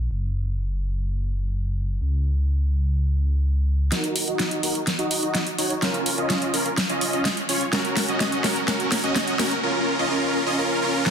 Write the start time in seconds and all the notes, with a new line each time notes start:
0.11 F#1
2.01 C#2
3.92 D#4 F#4 A#4, snare, closed hi-hat
4.04 closed hi-hat
4.16 open hi-hat
4.28 D#4 F#4 D#5, closed hi-hat
4.39 snare, closed hi-hat
4.51 closed hi-hat
4.63 D#4 F#4 A#4, open hi-hat
4.75 closed hi-hat
4.87 snare, closed hi-hat
4.99 D#4 F#4 D#5, closed hi-hat
5.11 open hi-hat
5.23 D#4 F#4 D#5, closed hi-hat
5.35 snare, closed hi-hat
5.47 closed hi-hat
5.58 D#4 F#4 C#5, open hi-hat
5.70 closed hi-hat
5.82 C#4 F4 A#4, snare, closed hi-hat
5.94 closed hi-hat
6.06 open hi-hat
6.18 C#4 F4 D#5, closed hi-hat
6.30 snare, closed hi-hat
6.42 closed hi-hat
6.54 C#4 F4 A#4, open hi-hat
6.66 closed hi-hat
6.78 snare, closed hi-hat
6.89 C#4 F4 D#5, closed hi-hat
7.01 open hi-hat
7.13 C#4 F4 D#5, closed hi-hat
7.25 snare, closed hi-hat
7.37 closed hi-hat
7.49 C#4 F4 C#5, open hi-hat
7.61 closed hi-hat
7.73 C#4 F#4 A#4, snare, closed hi-hat
7.85 closed hi-hat
7.97 snare, open hi-hat
8.08 C#4 F#4 D#5, closed hi-hat
8.20 snare, closed hi-hat
8.32 closed hi-hat
8.44 C#4 F#4 A#4, snare, open hi-hat
8.56 closed hi-hat
8.68 C#4 F#4 A#4, snare, closed hi-hat
8.80 closed hi-hat
8.92 snare, open hi-hat
9.04 C#4 F#4 D#5, closed hi-hat
9.16 snare, closed hi-hat
9.28 closed hi-hat
9.39 C#4 F#4 A#4, snare, open hi-hat
9.51 closed hi-hat
9.63 C#4 F4 A#4
9.99 C#4 F4 D#5
10.11 C#4 F4 A#4
10.46 C#4 F4 D#5
10.58 C#4 F4 A#4
10.82 C#4 F4 A#4
11.06 C#4 F4 A#4, snare